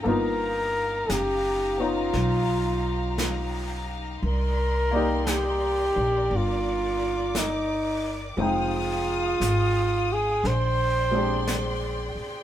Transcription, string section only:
Already playing: D#4
0.05 G4 F5 A#5
4.23 A#4 D5 C6
6.32 D6
8.38 F5 G5 D#6
10.44 D5 C6

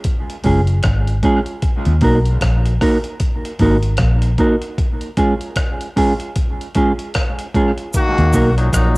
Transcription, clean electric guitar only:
0.44 G#3 C#4 F4 G#4
1.23 G#3 C#4 F4 G#4
2.02 A#3 D#4 F#4 A#4
2.81 A#3 D#4 F#4 A#4
3.60 A#3 D#4 F#4 A#4
4.39 A#3 D#4 F#4 A#4
5.17 G#3 C#4 F4 G#4
5.96 G#3 C#4 F4 G#4
6.75 G#3 C#4 F4 G#4
7.55 G#3 C#4 F4 G#4
8.34 A#3 D#4 F#4 A#4

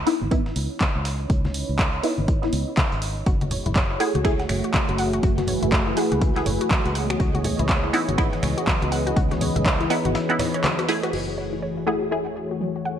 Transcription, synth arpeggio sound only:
3.26 F#4
3.41 F#4
3.51 C#5
3.66 E4
3.76 C#5
3.91 E4
4.00 F#5
4.15 F#4
4.25 E4
4.40 F#5
4.49 C#5
4.64 F#4
4.74 F#3
4.89 F#4
4.99 F#5
5.13 F#4
5.23 F#4
5.38 F#4
5.48 C#5
5.63 E4
5.72 C#5
5.87 E4
5.97 F#5
6.12 F#4
6.21 E4
6.36 F#5
6.46 C#5
6.61 F#4
6.71 F#3
6.85 F#4
6.95 F#5
7.10 F#4
7.20 F#4
7.35 F#4
7.44 C#5
7.59 E4
7.69 C#5
7.84 E4
7.93 F#5
8.08 F#4
8.18 E4
8.33 F#5
8.43 C#5
8.58 F#4
8.67 F#3
8.82 F#4
8.92 F#5
9.07 F#4
9.16 F#4
9.31 F#4
9.41 C#5
9.56 E4
9.66 C#5
9.80 E4
9.90 F#5
10.05 F#4
10.15 E4
10.30 F#5
10.39 C#5
10.54 C#5
10.64 F#3
10.79 F#4
10.89 F#4
11.03 F#4
11.13 F#4
11.28 F#4
11.38 C#5
11.53 E4
11.62 C#5
11.77 E4
11.87 F#5
12.02 F#4
12.12 E4
12.26 F#5
12.36 C#5
12.51 F#4
12.61 F#3
12.76 F#4
12.85 F#5

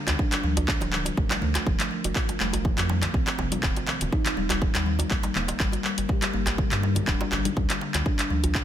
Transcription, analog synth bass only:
0.08 D2
0.44 D2
0.81 D1
1.17 A1
1.42 D2
1.67 F1
2.05 F1
2.40 F1
2.78 F2
3.14 C2
3.39 F1
3.63 D#1
4.01 D#1
4.37 D#1
4.75 D#2
5.11 A#1
5.36 D#1
5.60 G1
5.98 G1
6.34 G1
6.72 G2
7.08 D1
7.32 G1
7.57 D2
7.95 D2
8.30 D2

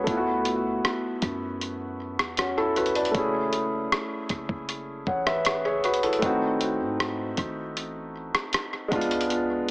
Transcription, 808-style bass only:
0.07 D2
1.22 F#2
2.19 E2
3.15 F#1
4.30 F#1
4.49 F#1
5.07 A1
6.22 G#1
6.80 G#2
7.38 G#1
7.76 A1
8.92 C#2

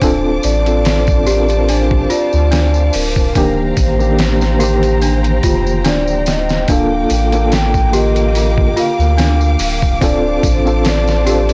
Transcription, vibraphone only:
Already playing: C5
0.44 D5
1.28 D5
1.70 C5
2.11 D5
2.95 A#4
3.37 A#4
3.79 C5
5.87 D5
6.29 D#5
6.71 F5
7.54 G5
7.95 D#5
8.79 F5
10.04 D5
10.46 C5
10.87 D5

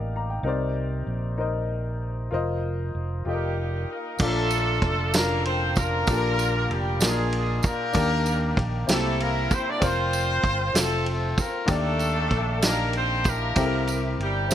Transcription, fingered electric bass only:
Already playing: A1
0.43 C2
1.07 A#1
2.32 F1
2.95 F1
3.26 F1
4.19 A#1
4.82 F1
6.07 A#1
6.70 F1
7.00 A#1
7.94 D#2
8.57 A#1
8.88 C2
9.81 F1
10.43 G1
10.74 F1
11.68 D#2
12.30 A#1
13.56 C2
14.18 G1

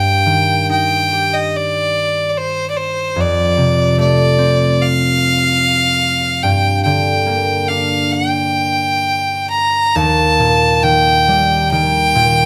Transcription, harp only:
Already playing: G2 A#3 D4
0.26 D#3
0.70 D#4
1.13 G4
3.16 F2
3.57 C3
3.98 A3
4.38 C4
6.44 G2
6.85 D3
7.26 A#3
7.69 D4
9.96 D#2
10.39 A#2
10.83 D#3
11.28 G3
11.72 D#3
12.15 A#2

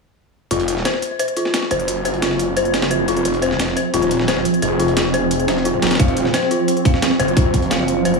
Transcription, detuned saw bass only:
0.51 F1
1.71 F#1
3.08 F#1
3.25 F1
3.59 F1
3.94 D#1
4.62 F1
5.48 F1
5.82 F#1
6.00 F1
7.19 F#1

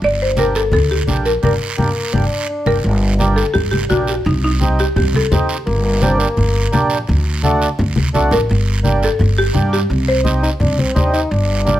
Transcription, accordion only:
0.37 A#3 D4 G4
1.07 A#3 D4 G4
1.42 A#3 D4 G4
1.78 A#3 D4 G4
2.13 A#3 D4 G4
2.66 A#3 D4 G4
3.19 A#3 D4 G4
3.89 A#3 D4 G4
4.60 C4 D#4 G4
5.31 C4 D#4 G4
6.02 A#3 D4 G4
6.72 A#3 D4 G4
7.43 A3 D4 F#4
8.14 A3 D4 F#4
8.83 A#3 D4 G4
9.54 A#3 D4 G4
10.24 C4 D#4 G4
10.94 C4 D#4 G4
11.65 A#3 D4 G4

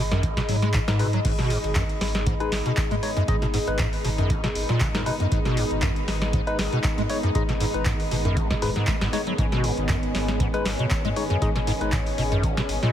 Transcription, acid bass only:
0.12 F#2
0.23 G#1
0.37 B2
0.49 F#3
0.62 G#3
0.74 G#2
0.88 G#2
1.00 B2
1.13 F#3
1.25 G#2
1.39 B2
1.50 G#2
1.76 F#2
2.27 G#2
2.66 B2
2.91 G#3
3.17 F#2
3.28 G#2
3.42 B2
3.54 G#2
3.79 G#2
4.05 B2
4.18 F#2
4.30 G#1
4.44 B2
4.69 A#2
4.81 C#3
4.95 G#2
5.06 B2
5.20 F#2
5.32 G#2
5.46 B2
5.57 G#2
5.83 F#2
6.33 G#2
6.73 B2
6.98 G#3
7.23 F#2
7.35 G#2
7.49 B2
7.60 G#2
7.86 G#2
8.11 B2
8.25 F#2
8.37 G#1
8.50 B2
8.62 G#2
8.76 G#2
8.88 G#3
9.01 G#2
9.13 G#3
9.27 F#3
9.39 G#2
9.52 B2
9.64 G#2
9.89 F#2
10.40 G#2
10.79 B2
11.05 G#3
11.30 F#2
11.42 G#2
11.56 B2
11.67 G#2
11.93 G#2
12.18 B2
12.32 F#2
12.44 G#1
12.57 B2
12.83 A#2

